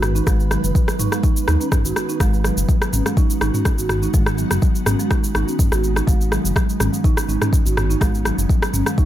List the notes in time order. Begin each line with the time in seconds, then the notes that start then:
Already playing: G#1 D#3 G#3 B3 B4
0.02 cross-stick, mid tom, cabasa
0.15 D#4, cabasa
0.27 G#1 G#3, kick, cross-stick, cabasa
0.40 cabasa
0.51 F#3, cross-stick, cabasa
0.64 F#1, cabasa
0.75 F#3, kick, cabasa
0.88 cross-stick, cabasa
0.99 G#1 D#4, mid tom, cabasa
1.12 G#3, cross-stick, cabasa
1.23 D#4, kick, cabasa
1.37 cabasa
1.48 D#2 D#4, cross-stick, cabasa
1.61 C#4, cabasa
1.72 kick, cross-stick, mid tom, cabasa
1.85 G#1 F#4, cabasa
1.96 cross-stick, cabasa
2.09 D#4, cabasa
2.20 G#1 G#3 F#4, kick, cross-stick, cabasa
2.33 cabasa
2.44 F#3, cross-stick, cabasa
2.57 F#1, cabasa
2.69 F#3, kick, cabasa
2.82 cross-stick, cabasa
2.93 G#1 C#4, mid tom, cabasa
3.06 G#3, cross-stick, cabasa
3.17 D#4, kick, cabasa
3.30 cabasa
3.41 G#1 D#4, cross-stick, cabasa
3.54 C#4, mid tom, cabasa
3.65 kick, cross-stick, cabasa
3.78 G#1 F#4, cabasa
3.89 cross-stick, mid tom, cabasa
4.03 D#4, cabasa
4.14 G#1 G#3, kick, cabasa
4.26 cross-stick, cabasa
4.38 F#3, cabasa
4.51 F#1, cross-stick, cabasa
4.62 F#3, kick, cabasa
4.75 cabasa
4.86 G#1 C#4, cross-stick, mid tom, cabasa
5.00 G#3, cabasa
5.10 D#4, kick, cross-stick, cabasa
5.24 cabasa
5.35 G#1 D#4, cross-stick, cabasa
5.48 C#4, cabasa
5.59 kick, mid tom, cabasa
5.72 G#1 F#4, cross-stick, cabasa
5.84 cabasa
5.96 D#4, cross-stick, cabasa
6.07 G#1 G#3 C#4, kick, cabasa
6.21 cabasa
6.31 F#3, cross-stick, cabasa
6.45 F#1, cabasa
6.56 F#3, kick, cross-stick, cabasa
6.69 cabasa
6.80 G#1 C#4, cross-stick, mid tom, cabasa
6.93 G#3, cabasa
7.04 D#4, kick, cabasa
7.17 cross-stick, cabasa
7.28 G#1 D#4, cabasa
7.42 C#4, cross-stick, mid tom, cabasa
7.53 kick, cabasa
7.66 G#1 F#4, cabasa
7.77 cross-stick, mid tom, cabasa
7.90 D#4, cabasa
8.01 G#1 G#3, kick, cross-stick, cabasa
8.15 cabasa
8.25 F#3, cross-stick, cabasa
8.38 F#1, cabasa
8.49 F#3, kick, cabasa
8.62 cross-stick, cabasa
8.74 G#1 C#4, mid tom, cabasa
8.86 G#3, cross-stick, cabasa
8.98 D#4, kick, cabasa